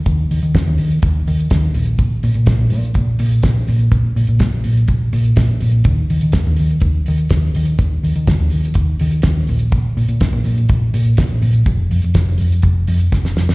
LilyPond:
<<
  \new Staff \with { instrumentName = "Fingered electric bass" } { \clef bass \time 4/4 \key ees \dorian \tempo 4 = 124 ees,8 ees16 ees16 ees,16 ees,16 ees8 ees,8 ees8 ees,8 bes,,8~ | bes,,8 bes,16 bes,16 bes,,16 bes,,16 bes,8 bes,,8 bes,8 bes,,8 bes,8 | bes,,8 bes,16 bes,16 bes,,16 bes,,16 bes,8 bes,,8 bes,8 bes,,8 bes,8 | ees,8 ees16 ees16 ees,16 ees,16 ees8 ees,8 ees8 ees,8 ees8 |
ees,8 ees16 ees16 ees,16 ees,16 ees8 ees,8 ees8 ees,8 bes,,8~ | bes,,8 bes,16 bes,16 bes,,16 bes,,16 bes,8 bes,,8 bes,8 bes,,8 bes,8 | f,,8 f,16 f,16 f,,16 f,,16 f,8 f,,8 f,8 f,,8 f,8 | }
  \new DrumStaff \with { instrumentName = "Drums" } \drummode { \time 4/4 <hh bd>8 hho16 hh16 <hh bd sn>8 hho16 hh16 <hh bd>8 hho16 hh16 <hh bd sn>8 hho16 hh16 | <hh bd>8 hho16 hh16 <hh bd sn>8 hho16 hh16 <hh bd>8 hho16 hh16 <hh bd sn>8 hho16 hh16 | <hh bd>8 hho16 hh16 <hh bd sn>8 hho16 hh16 <hh bd>8 hho16 hh16 <hh bd sn>8 hho16 hh16 | <hh bd>8 hho16 hh16 <hh bd sn>8 hho16 hh16 <hh bd>8 hho16 hh16 <hh bd sn>8 hho16 hh16 |
<hh bd>8 hho16 hh16 <hh bd sn>8 hho16 hh16 <hh bd>8 hho16 hh16 <hh bd sn>8 hho16 hh16 | <hh bd>8 hho16 hh16 <hh bd sn>8 hho16 hh16 <hh bd>8 hho16 hh16 <hh bd sn>8 hho16 hh16 | <hh bd>8 hho16 hh16 <hh bd sn>8 hho16 hh16 <hh bd>8 hho16 hh16 <bd sn>16 sn16 sn16 sn16 | }
>>